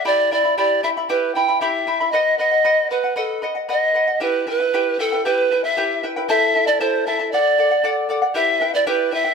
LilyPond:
<<
  \new Staff \with { instrumentName = "Charango" } { \time 2/4 \key e \minor \tempo 4 = 116 <e' g' e'' g'' b''>8 <e' e'' g'' b''>16 <e' e'' b''>16 <e' g' e'' g'' b''>8 <e' e'' g'' b''>16 <e' e'' b''>16 | <e' g' e'' g'' b''>8 <e' e'' g'' b''>16 <e' e'' b''>16 <e' g' e'' g'' b''>8 <e' e'' g'' b''>16 <e' e'' b''>16 | <b' dis'' fis''>8 <b' dis'' fis''>16 <dis'' fis''>16 <b' dis'' fis''>8 <b' dis'' fis''>16 <dis'' fis''>16 | <b' dis'' fis''>8 <b' dis'' fis''>16 <dis'' fis''>16 <b' dis'' fis''>8 <b' dis'' fis''>16 <dis'' fis''>16 |
<e' g' b' e'' g''>8 <e' b' e'' g''>16 <e' b' g''>16 <e' g' b' e'' g''>8 <e' b' e'' g''>16 <e' b' g''>16 | <e' g' b' e'' g''>8 <e' b' e'' g''>16 <e' b' g''>16 <e' g' b' e'' g''>8 <e' b' e'' g''>16 <e' b' g''>16 | <e' a' c'' e'' a''>8 <e' a' e'' a''>16 <e' a' a''>16 <e' a' c'' e'' a''>8 <e' a' e'' a''>16 <e' a' a''>16 | <a' d'' fis''>8 <a' d'' fis''>16 <d'' fis''>16 <a' d'' fis''>8 <a' d'' fis''>16 <d'' fis''>16 |
<e' g' b' e'' g''>8 <e' b' e'' g''>16 <e' b' g''>16 <e' g' b' e'' g''>8 <e' b' e'' g''>16 <e' b' g''>16 | }
  \new Staff \with { instrumentName = "Pan flute" } { \time 2/4 \key e \minor d''8 d''8 d''8 e''8 | b'8 g''8 e''4 | dis''8 dis''4 b'8 | a'8 r8 dis''4 |
b'8 b'4 a'8 | b'8. e''8. r8 | e''8. d''16 c''8 e''8 | d''4. r8 |
e''8. d''16 b'8 e''8 | }
>>